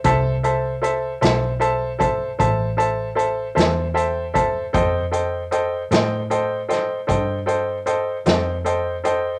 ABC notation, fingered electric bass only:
X:1
M:12/8
L:1/8
Q:3/8=51
K:Am
V:1 name="Fingered electric bass" clef=bass
C,,3 B,,,3 A,,,3 E,,3 | F,,3 A,,3 G,,3 F,,3 |]